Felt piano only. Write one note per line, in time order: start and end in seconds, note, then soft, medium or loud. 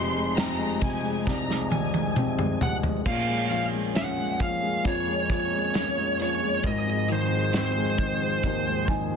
0.00 3.01 F1 medium
0.00 3.01 F2 medium
0.00 0.80 C3 medium
0.00 0.12 G#3 medium
0.14 0.57 G#3 medium
0.36 2.12 C4 medium
0.58 1.02 G#3 medium
0.82 1.26 C3 medium
1.04 1.48 G#3 medium
1.27 3.02 C2 medium
1.27 1.71 C3 medium
1.49 1.93 G#3 medium
1.72 2.61 C3 soft
1.94 2.37 G#3 medium
2.17 3.04 C4 medium
2.39 2.82 G#3 medium
2.62 3.05 C3 soft
2.84 3.05 G#3 medium
3.05 6.60 A#1 medium
3.05 6.60 A#2 medium
3.28 3.71 G#3 soft
3.50 4.38 F3 soft
3.72 4.15 G#3 soft
3.94 5.70 C#4 medium
4.17 4.61 G#3 soft
4.40 4.83 F3 soft
4.62 5.06 G#3 medium
4.84 6.60 F2 medium
4.84 5.29 F3 medium
5.07 5.51 G#3 soft
5.30 6.18 F3 soft
5.52 5.96 G#3 soft
5.76 6.62 C#4 medium
5.97 6.41 G#3 medium
6.20 6.63 F3 soft
6.42 6.64 G#3 medium
6.64 9.16 G#1 medium
6.64 9.16 G#2 medium
6.87 7.30 G#3 medium
7.09 7.97 D#3 soft
7.32 7.75 G#3 medium
7.54 9.16 C4 medium
7.77 8.19 G#3 medium
7.99 8.43 D#3 medium
8.21 8.65 G#3 medium
8.44 9.16 D#2 medium
8.44 8.88 D#3 medium
8.66 9.10 G#3 medium
8.89 9.16 D#3 soft
8.89 9.16 G#5 medium
9.11 9.16 G#3 medium